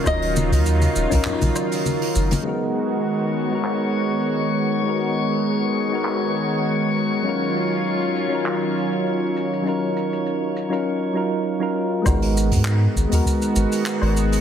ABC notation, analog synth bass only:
X:1
M:4/4
L:1/16
Q:"Swing 16ths" 1/4=100
K:Abdor
V:1 name="Analog synth bass" clef=bass
E,,,3 E,,2 z E,,, B,,, z B,,, z4 G,,, z | z16 | z16 | z16 |
z16 | A,,,3 A,,2 z A,,, E,, z2 A,,, z2 A,,,2 z |]